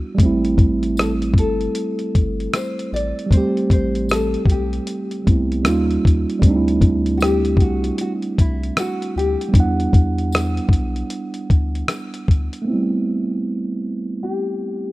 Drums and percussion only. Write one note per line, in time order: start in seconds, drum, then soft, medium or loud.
0.18 kick loud
0.18 closed hi-hat medium
0.45 closed hi-hat soft
0.58 kick loud
0.58 closed hi-hat medium
0.83 closed hi-hat soft
0.97 cross-stick loud
0.97 closed hi-hat medium
0.97 tambourine medium
1.22 closed hi-hat soft
1.34 kick medium
1.38 closed hi-hat medium
1.61 closed hi-hat soft
1.75 closed hi-hat medium
1.99 closed hi-hat soft
2.15 kick medium
2.15 closed hi-hat medium
2.40 closed hi-hat soft
2.53 cross-stick loud
2.53 closed hi-hat medium
2.53 tambourine medium
2.79 closed hi-hat soft
2.96 closed hi-hat medium
3.19 closed hi-hat medium
3.31 kick loud
3.31 closed hi-hat medium
3.57 closed hi-hat soft
3.70 kick medium
3.70 closed hi-hat medium
3.95 closed hi-hat soft
4.09 cross-stick loud
4.09 closed hi-hat medium
4.09 tambourine medium
4.34 closed hi-hat soft
4.46 kick medium
4.50 closed hi-hat medium
4.73 closed hi-hat soft
4.87 closed hi-hat medium
5.11 closed hi-hat soft
5.27 kick medium
5.27 closed hi-hat medium
5.52 closed hi-hat soft
5.65 cross-stick loud
5.65 closed hi-hat medium
5.65 tambourine medium
5.91 closed hi-hat soft
6.05 kick medium
6.05 closed hi-hat medium
6.30 closed hi-hat medium
6.42 kick loud
6.42 closed hi-hat medium
6.68 closed hi-hat soft
6.81 kick loud
6.81 closed hi-hat medium
7.06 closed hi-hat soft
7.21 cross-stick loud
7.21 closed hi-hat medium
7.21 tambourine medium
7.45 closed hi-hat soft
7.57 kick medium
7.57 closed hi-hat medium
7.84 closed hi-hat soft
7.98 closed hi-hat medium
8.22 closed hi-hat soft
8.38 kick medium
8.38 closed hi-hat medium
8.63 closed hi-hat soft
8.77 cross-stick loud
8.77 closed hi-hat medium
8.77 tambourine medium
9.02 closed hi-hat soft
9.19 closed hi-hat medium
9.41 closed hi-hat medium
9.54 kick loud
9.54 closed hi-hat medium
9.80 closed hi-hat soft
9.93 kick loud
9.93 closed hi-hat medium
10.18 closed hi-hat soft
10.32 cross-stick loud
10.32 tambourine medium
10.36 closed hi-hat medium
10.57 closed hi-hat soft
10.69 kick medium
10.73 closed hi-hat medium
10.96 closed hi-hat soft
11.10 closed hi-hat medium
11.34 closed hi-hat soft
11.50 kick medium
11.50 closed hi-hat medium
11.75 closed hi-hat soft
11.88 cross-stick loud
11.88 closed hi-hat medium
11.88 tambourine medium
12.14 closed hi-hat soft
12.28 kick medium
12.28 closed hi-hat medium
12.53 closed hi-hat medium